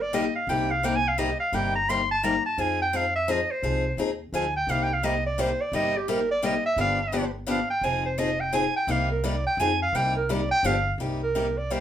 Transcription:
Already playing: G1
0.02 D5
0.13 C3 G3 A#3 D#4 G4 D#5
0.35 F5
0.47 C2 C3 G3 A#3 D#4 G4 G5
0.71 F5
0.83 C3 G3 A#3 D#4 G4 G5
0.96 G#5
1.08 F5
1.18 C3 G3 A#3 D#4 G4 D#5
1.40 F5
1.52 G1 C3 G3 A#3 D#4 G4 G5
1.76 A#5
1.89 C3 G3 A#3 D#4 G4 C6
2.11 A5
2.23 C3 G3 A#3 D#4 G4 A#5
2.46 A5
2.58 F2 F3 C4 D#4 G#4 G#5
2.82 G5
2.93 F3 C4 D#4 G#4 F5
3.16 E5
3.28 F3 C4 D#4 G#4 D#5
3.51 C5
3.63 C2 F3 C4 D#4 G#4
3.97 D#2 F3 C4 D#4 G#4
4.33 D2 F3 C4 D#4 G#4 G#5
4.56 G5
4.67 C2 C3 G3 A#3 D#4 G4 F5
4.83 G5
4.93 F5
5.03 C3 G3 A#3 D#4 G4 D#5
5.26 D5
5.38 C3 G3 A#3 D#4 G4 C5
5.61 D5
5.72 G1 C3 G3 A#3 D#4 G4 D#5
5.97 G4
6.08 C3 G3 A#3 D#4 G4 A#4
6.31 D5
6.43 C3 G3 A#3 D#4 G4 D#5
6.65 E5
6.76 G1 D3 F3 B3 D4 G4
6.81 F5
7.12 D3 F3 B3 D4 G4
7.47 D3 F3 B3 D4 G4 F5
7.70 G5
7.81 F1 F3 C4 D#4 G#4 G#5
8.06 C5
8.18 F3 C4 D#4 G#4 D#5
8.40 G5
8.53 F3 C4 D#4 G#4 G#5
8.76 G5
8.87 C2 C3 G3 A#3 D#4 G4 F5
9.11 A#4
9.24 C3 G3 A#3 D#4 G4 D5
9.47 G5
9.57 F2 F3 C4 D#4 G#4 G#5
9.82 F5
9.93 C2 C3 G3 A#3 D#4 G4 G5
10.16 A#4
10.29 C3 G3 A#3 D#4 G4 D5
10.51 G5
10.63 G1 D3 F3 B3 D4 G4 F5
10.98 C2 C3 G3 A#3 D#4 G4
11.23 A#4
11.35 C3 G3 A#3 D#4 G4
11.57 D5
11.70 C3 G3 A#3 D#4 G4 C5

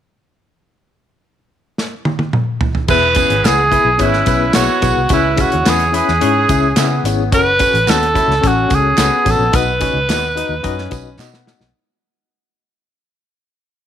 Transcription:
1.78 snare
2.05 high tom
2.19 high tom
2.33 mid tom
2.61 floor tom
2.75 floor tom
2.88 E1 E3 G#3 B3 E4 G#4 B4, kick, crash, tambourine
3.15 E3 B3 C#4 E4 G#4 C#5, kick, closed hi-hat, tambourine
3.30 G#1, closed hi-hat
3.43 C#2 B3 E4 G#4 B4, snare, clap, closed hi-hat, tambourine
3.71 B3 E4 G#4 B4, kick, closed hi-hat, tambourine
3.85 B1
3.98 G#1 G#3 B3 C#4 E4 G#4 B4 C#5, kick, closed hi-hat, tambourine
4.02 E4
4.13 snare
4.26 B1 B3 E4 G#4 B4, kick, closed hi-hat, tambourine
4.53 B1 G#3 B3 E4 F#4 G#4 C#5, snare, clap, closed hi-hat, tambourine
4.81 B1 B3 E4 G#4 B4, kick, closed hi-hat, tambourine
4.97 C2
5.09 C#2 C#3 G#3 C#4 E4 G#4 B4 C#5, kick, closed hi-hat, tambourine
5.14 E4
5.36 C#4 E4 G#4 C#5, kick, closed hi-hat, tambourine
5.41 F#4
5.51 D#2 G#3 E4 C#5, closed hi-hat
5.64 E2 G#3 B3 C#4 E4 G#4 B4 C#5, snare, clap, closed hi-hat, tambourine
5.69 G#4
5.79 closed hi-hat
5.92 B3 C#4 E4 G#4 B4 C#5, closed hi-hat, tambourine
5.97 G#4
6.08 E2, snare
6.21 G#2 E3 C#4 E4 G#4 C#5, closed hi-hat
6.49 C#2 C#4 E4 G#4 E5, kick, closed hi-hat, tambourine
6.76 C#3 B3 C#4 E4 G#4 E5, snare, clap, closed hi-hat, tambourine
7.04 G#1 C#4 E4 G#4 C#5, closed hi-hat, tambourine
7.32 F#1 C#4 F#4 A4 B4 C#5, kick, closed hi-hat, tambourine
7.59 C#4 F#4 A4 C#5, kick, closed hi-hat, tambourine
7.74 A1, closed hi-hat
7.87 D#2 B3 C#4 F#4 A4 C#5, snare, clap, closed hi-hat, tambourine
8.03 closed hi-hat
8.14 C#4 E4 F#4 A4 C#5, kick, closed hi-hat, tambourine
8.28 C#2, snare
8.41 A1 C#4 F#4 A4 C#5, kick, closed hi-hat, tambourine
8.47 F#4
8.68 C#2 C#4 F#4 A4 C#5, kick, closed hi-hat, tambourine
8.75 G#4
8.97 C#2 B3 C#4 F#4 A4 C#5, snare, clap, closed hi-hat, tambourine
9.25 A1 C#4 F#4 A4 C#5, kick, closed hi-hat, tambourine
9.30 A4
9.39 A#1
9.52 B1 B2 B3 D#4 F#4 B4 D#5, kick, closed hi-hat, tambourine
9.80 C#4 D#4 F#4 B4 D#5, kick, closed hi-hat, tambourine
9.93 C#2
10.08 D#2 B3 D#4 F#4 B4 D#5, snare, clap, closed hi-hat, tambourine
10.36 D#4 F#4 B4 D#5, closed hi-hat, tambourine
10.49 D#2
10.63 F#2 C#4 D#4 F#4 B4 D#5, kick, closed hi-hat, tambourine
10.78 snare
10.91 B1 D#4 F#4 B4 D#5, kick, closed hi-hat, tambourine
11.18 B2 B3 D#4 F#4 B4 D#5, snare, clap, tambourine
11.34 snare
11.46 D#4 F#4 B4 D#5, snare, tambourine
11.60 B1, snare

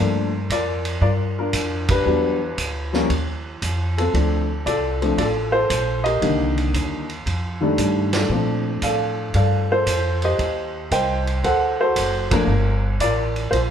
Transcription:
Already playing: G2 F3 F4 A#4
0.00 A3 A#3 D4
0.50 F2 F4 A#4 D5, kick, hi-hat pedal, ride
0.85 ride
1.01 G2 F4 A#4 D5, kick
1.39 D4 F4 A#4
1.53 F2, kick, hi-hat pedal, ride
1.89 D4 G4 B4, kick, ride
2.05 E2 F#3 G3 B3 D4
2.57 D2, kick, hi-hat pedal, ride
2.93 F3 G3 A#3 C#4, snare
3.10 D#2, kick, ride
3.62 F2, kick, hi-hat pedal, ride
3.98 C4 F4 A4, ride
4.13 D2 F3 A3 C4 D4, kick, ride
4.66 C2 F4 A4 D5, kick, hi-hat pedal, ride
5.02 F3 A3 C4 D4, ride
5.18 A1 F4 A4 D5, kick, ride
5.52 F4 A4 C5
5.70 A#1, kick, hi-hat pedal, ride
6.04 G4 A#4 D#5, ride
6.22 C2 D3 D#3 G3 A#3, kick, ride
6.58 ride
6.74 D#2, kick, hi-hat pedal, ride
7.10 ride
7.26 F2, kick, ride
7.61 D#3 G3 A3 D4
7.78 G2, kick, hi-hat pedal, ride
8.13 F4 A4 D5, snare, ride
8.29 A#2 F3 A3 C4 D4
8.82 A2 A4 D5 F5, kick, hi-hat pedal, ride
9.34 G2 A4 D5 F5, kick, ride
9.72 F4 A4 C5
9.86 F2, kick, hi-hat pedal, ride
10.22 G4 C5 D#5, ride
10.39 D#2, kick, ride
10.91 C2 C5 D#5 G5, kick, hi-hat pedal, ride
11.27 ride
11.43 D2 A4 C5 F#5, kick, ride
11.81 F#4 A4 C5
11.96 F#1, kick, hi-hat pedal, ride
12.31 F3 A3 A#3 D4 F4 A#4, kick, ride
12.47 G1
13.00 A1 F4 A#4 D5, kick, hi-hat pedal, ride
13.36 ride
13.51 A#1 F4 C5, kick, ride

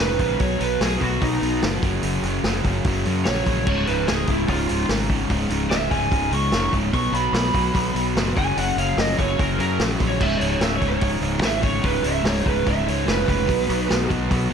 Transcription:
Already playing: C#2 G#2 C#3
0.00 F1 B4
0.18 A#1 C#2 G#2 C#3, kick, open hi-hat
0.39 B1 B2 F#3 B3 C#5, kick, open hi-hat
0.59 B1 B2 F#3 B3 B4, open hi-hat
0.80 B1 B2 F#3 B3 G#4, snare, open hi-hat
1.00 B1 B2 F#3 B3 F#4, kick, open hi-hat
1.21 B1 B2 F#3 B3 D#4, kick, open hi-hat
1.41 B1 B2 F#3 B3, open hi-hat
1.61 F#1 B2 F#3 B3, snare, open hi-hat
1.82 F#1 F#2 C#3 F#3, kick, open hi-hat
2.03 F#1 F#2 C#3 F#3, open hi-hat
2.23 F#1 F#2 C#3 F#3, open hi-hat
2.43 F#1 F#2 C#3 F#3, snare, open hi-hat
2.65 F#1 F#2 C#3 F#3, kick, open hi-hat
2.84 F#1 F#2 C#3 F#3, kick, open hi-hat
3.06 F#2 C#3 F#3, open hi-hat
3.25 A#1 F#2 C#3 F#3 C#5, snare, open hi-hat
3.47 A#1 F#2 C#3 F#3, kick, open hi-hat
3.66 C#1 C#2 G#2 C#3 C#5, kick, crash
3.87 C#1 C#2 G#2 C#3 B4, open hi-hat
4.07 C#1 C#2 G#2 C#3 G#4, snare, open hi-hat
4.27 C#1 C#2 G#2 C#3 E4, kick, open hi-hat
4.48 C#1 C#2 G#2 C#3 F4, kick, open hi-hat
4.69 C#1 C#2 G#2 C#3, open hi-hat
4.88 G#1 C#2 G#2 C#3, snare, open hi-hat
5.07 C#2 G#2 C#3, kick, open hi-hat
5.29 C#1 C#2 G#2 C#3, kick, open hi-hat
5.50 C#1 C#2 G#2 C#3, open hi-hat
5.70 C#1 C#2 G#2 C#3 E5, snare, open hi-hat
5.90 C#1 C#2 G#2 C#3 G#5, kick, open hi-hat
6.09 C#1 C#2 G#2 C#3, kick, open hi-hat
6.30 C#2 G#2 C#3, open hi-hat
6.34 C#6
6.52 F1 C#2 G#2 C#3, snare, open hi-hat
6.72 C#1 C#2 G#2 C#3, kick, open hi-hat
6.92 B1 B2 F#3 B3 C#6, kick, open hi-hat
7.11 B1 B2 F#3 B3 B5, open hi-hat
7.33 B1 B2 F#3 B3 B5, snare, open hi-hat
7.53 B1 B2 F#3 B3, kick, open hi-hat
7.73 B1 B2 F#3 B3, kick, open hi-hat
7.94 B1 B2 F#3 B3, open hi-hat
8.14 F#1 B2 F#3 B3, snare, open hi-hat
8.35 F#1 F#2 C#3 F#3 G#5, kick, open hi-hat
8.56 F#1 F#2 C#3 F#3 F#5, open hi-hat
8.76 F#1 F#2 C#3 F#3 F5, open hi-hat
8.97 F#1 F#2 C#3 F#3 D#5, snare, open hi-hat
9.18 F#1 F#2 C#3 F#3 C#5, kick, open hi-hat
9.39 F#1 F#2 C#3 F#3 A#4, kick, open hi-hat
9.59 F#2 C#3 F#3 A#4, open hi-hat
9.79 A#1 F#2 C#3 F#3, snare, open hi-hat
10.00 A#1 F#2 C#3 F#3, kick, open hi-hat
10.09 C#5
10.17 C#1 C#2 G#2 C#3 G#3 C#4 F4 C#5, kick, crash
10.23 E5
10.38 C#1 C#2 G#2 C#3 C#5, open hi-hat
10.51 C#5
10.60 C#1 C#2 G#2 C#3 E5, snare, open hi-hat
10.77 C#2 C#5
10.81 C#1 G#2 C#3, kick, open hi-hat
10.90 C#5
11.01 C#1 C#2 G#2 C#3, kick, open hi-hat
11.21 C#1 C#2 G#2 C#3, open hi-hat
11.41 C#2 G#2 C#3 E5, snare, open hi-hat
11.60 C#2 G#2 C#3 C#5, kick, open hi-hat
11.82 C#1 C#2 G#2 C#3 B4, kick, open hi-hat
12.02 C#1 C#2 G#2 C#3 E5, open hi-hat
12.23 C#1 C#2 G#2 C#3, snare, open hi-hat
12.27 C#5
12.43 C#1 C#2 G#2 C#3 B4, kick, open hi-hat
12.64 C#1 C#2 G#2 C#3, kick, open hi-hat
12.68 E5
12.84 C#2 G#2 C#3, open hi-hat
12.89 C#5
13.05 F1 C#2 G#2 C#3 B4, snare, open hi-hat
13.26 F1 C#2 G#2 C#3 B4, kick, open hi-hat
13.46 B1 B2 F#3 B3 D#4 F#4 D#5, kick, open hi-hat
13.67 B1 B2 F#3 B3, open hi-hat
13.89 B1 B2 F#3 B3, snare, open hi-hat
14.09 B1 B2 F#3 B3, kick, open hi-hat
14.29 B1 B2 F#3 B3, kick, open hi-hat
14.50 B2

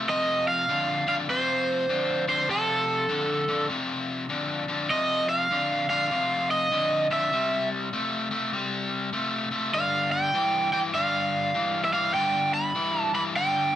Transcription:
0.09 F2 C3 D#5
0.48 F5
0.69 F2 D3
1.07 F2 D3 F5
1.29 F2 C3 C5
1.89 F2 D3
2.28 F2 D3 C5
2.49 F2 C3 A4
3.09 F2 D3
3.48 F2 D3
3.69 F2 C3
4.29 F2 D3
4.68 F2 D3
4.90 F2 C3 D#5
5.29 F5
5.51 F2 D3
5.90 F2 D3 F5
6.11 F2 C3
6.51 D#5
6.72 F2 D3
7.10 F2 D3 E5
7.32 C3 G3
7.93 C3 A3
8.31 C3 A3
8.53 C3 G3
9.13 C3 A3
9.51 C3 A3
9.73 G2 D3 F5
10.12 G5
10.34 G2 E3
10.73 G2 E3 G5
10.94 G2 D3 F5
11.54 G2 E3
11.84 E5
11.93 G2 E3 F5
12.14 G2 D3 G5
12.54 B5
12.75 G2 E3
13.02 A5
13.14 G2 E3 B5
13.36 G2 D3 G5

